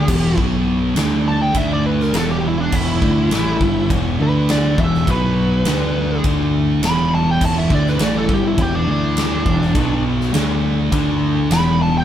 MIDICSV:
0, 0, Header, 1, 6, 480
1, 0, Start_track
1, 0, Key_signature, 1, "minor"
1, 0, Tempo, 585938
1, 306, Time_signature, 4, 2, 24, 8
1, 9866, End_track
2, 0, Start_track
2, 0, Title_t, "Lead electric guitar"
2, 0, Program_c, 0, 29
2, 0, Note_on_c, 0, 67, 87
2, 311, Note_off_c, 0, 67, 0
2, 1049, Note_on_c, 0, 81, 96
2, 1156, Note_off_c, 0, 81, 0
2, 1164, Note_on_c, 0, 79, 84
2, 1288, Note_off_c, 0, 79, 0
2, 1288, Note_on_c, 0, 76, 83
2, 1396, Note_off_c, 0, 76, 0
2, 1419, Note_on_c, 0, 74, 89
2, 1525, Note_off_c, 0, 74, 0
2, 1525, Note_on_c, 0, 71, 95
2, 1653, Note_off_c, 0, 71, 0
2, 1653, Note_on_c, 0, 70, 96
2, 1759, Note_off_c, 0, 70, 0
2, 1784, Note_on_c, 0, 69, 89
2, 1885, Note_off_c, 0, 69, 0
2, 1895, Note_on_c, 0, 67, 99
2, 2026, Note_off_c, 0, 67, 0
2, 2026, Note_on_c, 0, 64, 90
2, 2126, Note_off_c, 0, 64, 0
2, 2136, Note_on_c, 0, 62, 84
2, 2241, Note_off_c, 0, 62, 0
2, 2254, Note_on_c, 0, 64, 88
2, 3177, Note_off_c, 0, 64, 0
2, 3459, Note_on_c, 0, 71, 93
2, 3680, Note_off_c, 0, 71, 0
2, 3691, Note_on_c, 0, 74, 87
2, 3917, Note_off_c, 0, 74, 0
2, 3936, Note_on_c, 0, 76, 88
2, 4159, Note_off_c, 0, 76, 0
2, 4186, Note_on_c, 0, 71, 105
2, 5103, Note_off_c, 0, 71, 0
2, 5616, Note_on_c, 0, 83, 97
2, 5839, Note_off_c, 0, 83, 0
2, 5855, Note_on_c, 0, 81, 85
2, 5986, Note_off_c, 0, 81, 0
2, 5986, Note_on_c, 0, 79, 96
2, 6088, Note_off_c, 0, 79, 0
2, 6105, Note_on_c, 0, 81, 88
2, 6207, Note_off_c, 0, 81, 0
2, 6208, Note_on_c, 0, 76, 91
2, 6342, Note_off_c, 0, 76, 0
2, 6342, Note_on_c, 0, 74, 88
2, 6463, Note_off_c, 0, 74, 0
2, 6463, Note_on_c, 0, 71, 96
2, 6566, Note_off_c, 0, 71, 0
2, 6592, Note_on_c, 0, 74, 85
2, 6690, Note_off_c, 0, 74, 0
2, 6703, Note_on_c, 0, 69, 93
2, 6828, Note_off_c, 0, 69, 0
2, 6828, Note_on_c, 0, 67, 89
2, 6928, Note_off_c, 0, 67, 0
2, 6942, Note_on_c, 0, 64, 91
2, 7062, Note_off_c, 0, 64, 0
2, 7062, Note_on_c, 0, 67, 88
2, 7165, Note_off_c, 0, 67, 0
2, 7170, Note_on_c, 0, 62, 89
2, 7278, Note_off_c, 0, 62, 0
2, 7297, Note_on_c, 0, 62, 91
2, 8215, Note_off_c, 0, 62, 0
2, 9446, Note_on_c, 0, 83, 107
2, 9670, Note_off_c, 0, 83, 0
2, 9684, Note_on_c, 0, 81, 90
2, 9792, Note_off_c, 0, 81, 0
2, 9810, Note_on_c, 0, 79, 94
2, 9866, Note_off_c, 0, 79, 0
2, 9866, End_track
3, 0, Start_track
3, 0, Title_t, "Synth drone"
3, 0, Program_c, 1, 95
3, 0, Note_on_c, 1, 64, 81
3, 290, Note_off_c, 1, 64, 0
3, 796, Note_on_c, 1, 62, 72
3, 797, Note_on_c, 1, 69, 67
3, 802, Note_on_c, 1, 76, 85
3, 1742, Note_off_c, 1, 76, 0
3, 1745, Note_off_c, 1, 62, 0
3, 1746, Note_off_c, 1, 69, 0
3, 1747, Note_on_c, 1, 64, 78
3, 1752, Note_on_c, 1, 76, 87
3, 1753, Note_on_c, 1, 71, 76
3, 3416, Note_off_c, 1, 64, 0
3, 3419, Note_off_c, 1, 71, 0
3, 4132, Note_off_c, 1, 76, 0
3, 4628, Note_on_c, 1, 57, 64
3, 4628, Note_on_c, 1, 64, 85
3, 4631, Note_on_c, 1, 50, 80
3, 5582, Note_off_c, 1, 57, 0
3, 5583, Note_off_c, 1, 50, 0
3, 5593, Note_on_c, 1, 52, 83
3, 5596, Note_on_c, 1, 59, 71
3, 7255, Note_off_c, 1, 52, 0
3, 7257, Note_off_c, 1, 59, 0
3, 7955, Note_off_c, 1, 64, 0
3, 8459, Note_on_c, 1, 57, 68
3, 8468, Note_on_c, 1, 64, 84
3, 8471, Note_on_c, 1, 50, 86
3, 9413, Note_off_c, 1, 57, 0
3, 9418, Note_on_c, 1, 52, 86
3, 9419, Note_off_c, 1, 50, 0
3, 9423, Note_on_c, 1, 59, 81
3, 9866, Note_off_c, 1, 52, 0
3, 9866, Note_off_c, 1, 59, 0
3, 9866, Note_off_c, 1, 64, 0
3, 9866, End_track
4, 0, Start_track
4, 0, Title_t, "Distorted electric guitar"
4, 0, Program_c, 2, 30
4, 66, Note_on_c, 2, 40, 96
4, 70, Note_on_c, 2, 47, 82
4, 73, Note_on_c, 2, 52, 95
4, 299, Note_off_c, 2, 40, 0
4, 301, Note_off_c, 2, 47, 0
4, 303, Note_off_c, 2, 52, 0
4, 311, Note_on_c, 2, 47, 108
4, 313, Note_on_c, 2, 54, 87
4, 317, Note_on_c, 2, 59, 107
4, 779, Note_off_c, 2, 47, 0
4, 782, Note_on_c, 2, 50, 90
4, 783, Note_off_c, 2, 54, 0
4, 786, Note_off_c, 2, 59, 0
4, 786, Note_on_c, 2, 57, 97
4, 791, Note_on_c, 2, 62, 97
4, 1251, Note_off_c, 2, 50, 0
4, 1255, Note_off_c, 2, 57, 0
4, 1261, Note_off_c, 2, 62, 0
4, 1261, Note_on_c, 2, 50, 99
4, 1265, Note_on_c, 2, 57, 88
4, 1271, Note_on_c, 2, 62, 103
4, 1740, Note_off_c, 2, 50, 0
4, 1741, Note_off_c, 2, 57, 0
4, 1745, Note_off_c, 2, 62, 0
4, 1749, Note_on_c, 2, 40, 97
4, 1749, Note_on_c, 2, 47, 92
4, 1756, Note_on_c, 2, 52, 90
4, 2220, Note_off_c, 2, 40, 0
4, 2224, Note_off_c, 2, 47, 0
4, 2228, Note_off_c, 2, 52, 0
4, 2230, Note_on_c, 2, 40, 92
4, 2239, Note_on_c, 2, 47, 105
4, 2239, Note_on_c, 2, 52, 103
4, 2464, Note_off_c, 2, 40, 0
4, 2465, Note_off_c, 2, 47, 0
4, 2468, Note_on_c, 2, 50, 94
4, 2469, Note_off_c, 2, 52, 0
4, 2475, Note_on_c, 2, 57, 104
4, 2476, Note_on_c, 2, 62, 103
4, 2704, Note_off_c, 2, 50, 0
4, 2707, Note_off_c, 2, 57, 0
4, 2708, Note_off_c, 2, 62, 0
4, 2712, Note_on_c, 2, 45, 82
4, 2718, Note_on_c, 2, 52, 102
4, 2721, Note_on_c, 2, 57, 102
4, 2946, Note_off_c, 2, 45, 0
4, 2949, Note_off_c, 2, 52, 0
4, 2951, Note_off_c, 2, 57, 0
4, 2953, Note_on_c, 2, 43, 99
4, 2957, Note_on_c, 2, 50, 94
4, 2963, Note_on_c, 2, 55, 93
4, 3187, Note_off_c, 2, 43, 0
4, 3189, Note_off_c, 2, 50, 0
4, 3192, Note_off_c, 2, 55, 0
4, 3195, Note_on_c, 2, 40, 93
4, 3200, Note_on_c, 2, 47, 98
4, 3202, Note_on_c, 2, 52, 104
4, 3428, Note_off_c, 2, 40, 0
4, 3430, Note_off_c, 2, 47, 0
4, 3432, Note_off_c, 2, 52, 0
4, 3434, Note_on_c, 2, 50, 112
4, 3439, Note_on_c, 2, 57, 106
4, 3442, Note_on_c, 2, 62, 105
4, 3907, Note_off_c, 2, 50, 0
4, 3910, Note_off_c, 2, 57, 0
4, 3912, Note_off_c, 2, 62, 0
4, 3914, Note_on_c, 2, 40, 94
4, 3919, Note_on_c, 2, 47, 87
4, 3923, Note_on_c, 2, 52, 94
4, 4146, Note_off_c, 2, 47, 0
4, 4148, Note_off_c, 2, 40, 0
4, 4152, Note_off_c, 2, 52, 0
4, 4156, Note_on_c, 2, 47, 108
4, 4158, Note_on_c, 2, 54, 98
4, 4161, Note_on_c, 2, 59, 113
4, 4628, Note_off_c, 2, 47, 0
4, 4630, Note_off_c, 2, 54, 0
4, 4631, Note_off_c, 2, 59, 0
4, 4632, Note_on_c, 2, 50, 87
4, 4638, Note_on_c, 2, 57, 87
4, 4641, Note_on_c, 2, 62, 94
4, 5102, Note_off_c, 2, 50, 0
4, 5107, Note_off_c, 2, 62, 0
4, 5110, Note_off_c, 2, 57, 0
4, 5112, Note_on_c, 2, 50, 92
4, 5117, Note_on_c, 2, 62, 105
4, 5118, Note_on_c, 2, 57, 106
4, 5586, Note_off_c, 2, 50, 0
4, 5589, Note_off_c, 2, 62, 0
4, 5590, Note_off_c, 2, 57, 0
4, 5596, Note_on_c, 2, 40, 83
4, 5599, Note_on_c, 2, 47, 90
4, 5603, Note_on_c, 2, 52, 100
4, 6058, Note_off_c, 2, 40, 0
4, 6062, Note_off_c, 2, 47, 0
4, 6066, Note_off_c, 2, 52, 0
4, 6068, Note_on_c, 2, 40, 91
4, 6072, Note_on_c, 2, 47, 107
4, 6076, Note_on_c, 2, 52, 116
4, 6299, Note_off_c, 2, 47, 0
4, 6300, Note_off_c, 2, 52, 0
4, 6302, Note_on_c, 2, 50, 96
4, 6304, Note_off_c, 2, 40, 0
4, 6304, Note_on_c, 2, 57, 87
4, 6311, Note_on_c, 2, 62, 109
4, 6537, Note_off_c, 2, 50, 0
4, 6540, Note_off_c, 2, 57, 0
4, 6540, Note_on_c, 2, 45, 85
4, 6546, Note_off_c, 2, 62, 0
4, 6546, Note_on_c, 2, 52, 91
4, 6549, Note_on_c, 2, 57, 101
4, 6777, Note_on_c, 2, 43, 99
4, 6780, Note_off_c, 2, 45, 0
4, 6782, Note_off_c, 2, 52, 0
4, 6783, Note_on_c, 2, 50, 93
4, 6785, Note_off_c, 2, 57, 0
4, 6786, Note_on_c, 2, 55, 104
4, 7013, Note_off_c, 2, 43, 0
4, 7016, Note_on_c, 2, 40, 84
4, 7021, Note_off_c, 2, 50, 0
4, 7022, Note_off_c, 2, 55, 0
4, 7025, Note_on_c, 2, 47, 105
4, 7028, Note_on_c, 2, 52, 105
4, 7252, Note_off_c, 2, 47, 0
4, 7256, Note_on_c, 2, 50, 95
4, 7258, Note_off_c, 2, 40, 0
4, 7258, Note_off_c, 2, 52, 0
4, 7262, Note_on_c, 2, 57, 99
4, 7267, Note_on_c, 2, 62, 108
4, 7737, Note_off_c, 2, 50, 0
4, 7739, Note_off_c, 2, 57, 0
4, 7742, Note_off_c, 2, 62, 0
4, 7744, Note_on_c, 2, 40, 79
4, 7748, Note_on_c, 2, 47, 89
4, 7749, Note_on_c, 2, 52, 92
4, 7972, Note_off_c, 2, 47, 0
4, 7980, Note_off_c, 2, 40, 0
4, 7982, Note_on_c, 2, 47, 98
4, 7984, Note_off_c, 2, 52, 0
4, 7984, Note_on_c, 2, 54, 113
4, 7991, Note_on_c, 2, 59, 106
4, 8459, Note_off_c, 2, 47, 0
4, 8460, Note_off_c, 2, 54, 0
4, 8463, Note_off_c, 2, 59, 0
4, 8466, Note_on_c, 2, 50, 104
4, 8471, Note_on_c, 2, 57, 101
4, 8475, Note_on_c, 2, 62, 88
4, 8934, Note_off_c, 2, 50, 0
4, 8937, Note_off_c, 2, 57, 0
4, 8944, Note_off_c, 2, 62, 0
4, 8944, Note_on_c, 2, 50, 100
4, 8947, Note_on_c, 2, 57, 96
4, 8953, Note_on_c, 2, 62, 100
4, 9418, Note_off_c, 2, 50, 0
4, 9419, Note_off_c, 2, 57, 0
4, 9423, Note_off_c, 2, 62, 0
4, 9431, Note_on_c, 2, 47, 103
4, 9432, Note_on_c, 2, 40, 84
4, 9437, Note_on_c, 2, 52, 96
4, 9866, Note_off_c, 2, 40, 0
4, 9866, Note_off_c, 2, 47, 0
4, 9866, Note_off_c, 2, 52, 0
4, 9866, End_track
5, 0, Start_track
5, 0, Title_t, "Fingered electric bass"
5, 0, Program_c, 3, 33
5, 66, Note_on_c, 3, 28, 94
5, 290, Note_off_c, 3, 28, 0
5, 309, Note_on_c, 3, 35, 104
5, 757, Note_off_c, 3, 35, 0
5, 783, Note_on_c, 3, 38, 85
5, 1234, Note_off_c, 3, 38, 0
5, 1266, Note_on_c, 3, 38, 109
5, 1717, Note_off_c, 3, 38, 0
5, 1742, Note_on_c, 3, 28, 86
5, 2195, Note_off_c, 3, 28, 0
5, 2233, Note_on_c, 3, 28, 97
5, 2456, Note_off_c, 3, 28, 0
5, 2472, Note_on_c, 3, 38, 97
5, 2696, Note_off_c, 3, 38, 0
5, 2703, Note_on_c, 3, 33, 90
5, 2931, Note_off_c, 3, 33, 0
5, 2952, Note_on_c, 3, 31, 95
5, 3176, Note_off_c, 3, 31, 0
5, 3195, Note_on_c, 3, 28, 97
5, 3418, Note_off_c, 3, 28, 0
5, 3429, Note_on_c, 3, 38, 94
5, 3880, Note_off_c, 3, 38, 0
5, 3915, Note_on_c, 3, 28, 102
5, 4139, Note_off_c, 3, 28, 0
5, 4152, Note_on_c, 3, 35, 101
5, 4601, Note_off_c, 3, 35, 0
5, 4636, Note_on_c, 3, 38, 88
5, 5083, Note_off_c, 3, 38, 0
5, 5114, Note_on_c, 3, 38, 93
5, 5562, Note_off_c, 3, 38, 0
5, 5585, Note_on_c, 3, 28, 81
5, 6037, Note_off_c, 3, 28, 0
5, 6071, Note_on_c, 3, 28, 98
5, 6296, Note_off_c, 3, 28, 0
5, 6310, Note_on_c, 3, 38, 92
5, 6535, Note_off_c, 3, 38, 0
5, 6547, Note_on_c, 3, 33, 81
5, 6773, Note_off_c, 3, 33, 0
5, 6790, Note_on_c, 3, 31, 96
5, 7015, Note_off_c, 3, 31, 0
5, 7027, Note_on_c, 3, 28, 106
5, 7253, Note_off_c, 3, 28, 0
5, 7278, Note_on_c, 3, 38, 99
5, 7722, Note_off_c, 3, 38, 0
5, 7748, Note_on_c, 3, 28, 94
5, 7973, Note_off_c, 3, 28, 0
5, 7987, Note_on_c, 3, 35, 94
5, 8436, Note_off_c, 3, 35, 0
5, 8459, Note_on_c, 3, 38, 86
5, 8911, Note_off_c, 3, 38, 0
5, 8946, Note_on_c, 3, 38, 103
5, 9394, Note_off_c, 3, 38, 0
5, 9424, Note_on_c, 3, 28, 96
5, 9866, Note_off_c, 3, 28, 0
5, 9866, End_track
6, 0, Start_track
6, 0, Title_t, "Drums"
6, 66, Note_on_c, 9, 49, 104
6, 68, Note_on_c, 9, 36, 112
6, 148, Note_off_c, 9, 49, 0
6, 150, Note_off_c, 9, 36, 0
6, 308, Note_on_c, 9, 36, 100
6, 390, Note_off_c, 9, 36, 0
6, 787, Note_on_c, 9, 53, 83
6, 797, Note_on_c, 9, 38, 123
6, 869, Note_off_c, 9, 53, 0
6, 878, Note_off_c, 9, 38, 0
6, 1265, Note_on_c, 9, 53, 75
6, 1269, Note_on_c, 9, 36, 92
6, 1347, Note_off_c, 9, 53, 0
6, 1351, Note_off_c, 9, 36, 0
6, 1639, Note_on_c, 9, 38, 34
6, 1721, Note_off_c, 9, 38, 0
6, 1751, Note_on_c, 9, 53, 83
6, 1761, Note_on_c, 9, 38, 118
6, 1833, Note_off_c, 9, 53, 0
6, 1843, Note_off_c, 9, 38, 0
6, 2231, Note_on_c, 9, 49, 104
6, 2233, Note_on_c, 9, 36, 101
6, 2313, Note_off_c, 9, 49, 0
6, 2315, Note_off_c, 9, 36, 0
6, 2474, Note_on_c, 9, 36, 106
6, 2556, Note_off_c, 9, 36, 0
6, 2713, Note_on_c, 9, 53, 80
6, 2722, Note_on_c, 9, 38, 124
6, 2794, Note_off_c, 9, 53, 0
6, 2804, Note_off_c, 9, 38, 0
6, 2956, Note_on_c, 9, 36, 112
6, 3038, Note_off_c, 9, 36, 0
6, 3197, Note_on_c, 9, 36, 102
6, 3199, Note_on_c, 9, 53, 67
6, 3279, Note_off_c, 9, 36, 0
6, 3281, Note_off_c, 9, 53, 0
6, 3676, Note_on_c, 9, 53, 74
6, 3686, Note_on_c, 9, 38, 118
6, 3758, Note_off_c, 9, 53, 0
6, 3767, Note_off_c, 9, 38, 0
6, 3917, Note_on_c, 9, 36, 118
6, 3999, Note_off_c, 9, 36, 0
6, 4047, Note_on_c, 9, 38, 32
6, 4129, Note_off_c, 9, 38, 0
6, 4156, Note_on_c, 9, 36, 101
6, 4159, Note_on_c, 9, 53, 71
6, 4238, Note_off_c, 9, 36, 0
6, 4241, Note_off_c, 9, 53, 0
6, 4631, Note_on_c, 9, 53, 89
6, 4641, Note_on_c, 9, 38, 115
6, 4713, Note_off_c, 9, 53, 0
6, 4722, Note_off_c, 9, 38, 0
6, 5111, Note_on_c, 9, 53, 69
6, 5114, Note_on_c, 9, 36, 108
6, 5193, Note_off_c, 9, 53, 0
6, 5196, Note_off_c, 9, 36, 0
6, 5593, Note_on_c, 9, 53, 83
6, 5603, Note_on_c, 9, 38, 123
6, 5675, Note_off_c, 9, 53, 0
6, 5684, Note_off_c, 9, 38, 0
6, 6071, Note_on_c, 9, 36, 102
6, 6072, Note_on_c, 9, 49, 104
6, 6153, Note_off_c, 9, 36, 0
6, 6154, Note_off_c, 9, 49, 0
6, 6311, Note_on_c, 9, 36, 102
6, 6393, Note_off_c, 9, 36, 0
6, 6444, Note_on_c, 9, 38, 34
6, 6526, Note_off_c, 9, 38, 0
6, 6547, Note_on_c, 9, 53, 81
6, 6557, Note_on_c, 9, 38, 121
6, 6629, Note_off_c, 9, 53, 0
6, 6639, Note_off_c, 9, 38, 0
6, 6791, Note_on_c, 9, 36, 112
6, 6872, Note_off_c, 9, 36, 0
6, 7027, Note_on_c, 9, 53, 61
6, 7028, Note_on_c, 9, 36, 102
6, 7109, Note_off_c, 9, 53, 0
6, 7110, Note_off_c, 9, 36, 0
6, 7509, Note_on_c, 9, 53, 71
6, 7519, Note_on_c, 9, 38, 122
6, 7591, Note_off_c, 9, 53, 0
6, 7601, Note_off_c, 9, 38, 0
6, 7749, Note_on_c, 9, 36, 109
6, 7831, Note_off_c, 9, 36, 0
6, 7875, Note_on_c, 9, 38, 35
6, 7957, Note_off_c, 9, 38, 0
6, 7987, Note_on_c, 9, 53, 72
6, 7988, Note_on_c, 9, 36, 108
6, 8069, Note_off_c, 9, 53, 0
6, 8070, Note_off_c, 9, 36, 0
6, 8360, Note_on_c, 9, 38, 37
6, 8442, Note_off_c, 9, 38, 0
6, 8469, Note_on_c, 9, 53, 78
6, 8479, Note_on_c, 9, 38, 118
6, 8551, Note_off_c, 9, 53, 0
6, 8561, Note_off_c, 9, 38, 0
6, 8948, Note_on_c, 9, 36, 104
6, 8948, Note_on_c, 9, 53, 81
6, 9030, Note_off_c, 9, 36, 0
6, 9030, Note_off_c, 9, 53, 0
6, 9427, Note_on_c, 9, 53, 83
6, 9436, Note_on_c, 9, 38, 113
6, 9509, Note_off_c, 9, 53, 0
6, 9518, Note_off_c, 9, 38, 0
6, 9866, End_track
0, 0, End_of_file